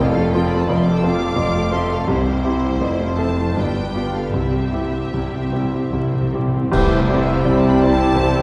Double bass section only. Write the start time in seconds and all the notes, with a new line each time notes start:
0.01 F1
0.69 F1
1.38 F1
2.08 C2
2.81 F1
3.56 G1
4.34 C2
5.14 C2
5.95 C2
6.72 C2